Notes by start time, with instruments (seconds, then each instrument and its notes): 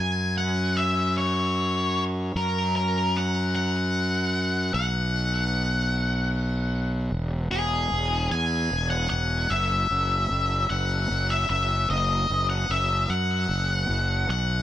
Already playing: fingered electric bass F#2, lead electric guitar G#5
0.38 lead electric guitar F#5
0.77 lead electric guitar E5
1.18 lead electric guitar C#5
2.36 fingered electric bass F#2, lead electric guitar A#4
2.76 lead electric guitar A#4
3.17 lead electric guitar F#5
3.56 lead electric guitar F#5
4.74 fingered electric bass B1, lead electric guitar F#5
7.12 fingered electric bass E1
7.51 fingered electric bass E1, lead electric guitar G#4
7.92 fingered electric bass E1
8.31 fingered electric bass E2, lead electric guitar G#5
8.71 fingered electric bass E1
8.90 lead electric guitar F#5
9.10 fingered electric bass E1, lead electric guitar F#5
9.50 fingered electric bass F#1, lead electric guitar E5
9.91 fingered electric bass F#1
10.31 fingered electric bass F#1
10.70 fingered electric bass F#1, lead electric guitar F#5
11.10 fingered electric bass F#1
11.30 lead electric guitar E5
11.50 fingered electric bass F#1, lead electric guitar E5
11.90 fingered electric bass F#1, lead electric guitar D#5
12.30 fingered electric bass F#1
12.50 lead electric guitar F#5
12.69 fingered electric bass F#1, lead electric guitar E5
13.10 fingered electric bass F#2, lead electric guitar F#5
13.49 fingered electric bass F#1
13.89 fingered electric bass F#1
14.29 fingered electric bass B1, lead electric guitar F#5